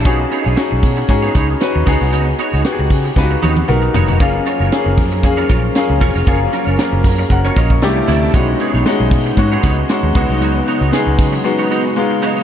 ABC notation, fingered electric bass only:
X:1
M:4/4
L:1/16
Q:"Swing 16ths" 1/4=116
K:F#
V:1 name="Fingered electric bass" clef=bass
B,,,2 z B,,, z B,,, B,,2 G,,2 C,,2 z D,, C,, ^B,,, | C,,2 z C,, z C,, C,2 C,,2 D,,2 B,,,2 E,,,2 | F,,,2 z F,,, z F,,, F,,2 E,,2 A,,,2 z C,, =E,,, ^E,,, | F,,,2 z F,,, z F,,, F,,2 F,,,2 A,,,2 =C,,2 =D,,2 |
B,,,2 z B,,, z B,,, B,,2 G,,2 C,,2 z D,, C,, ^B,,, | C,,2 z C,, z C,, C,2 z8 |]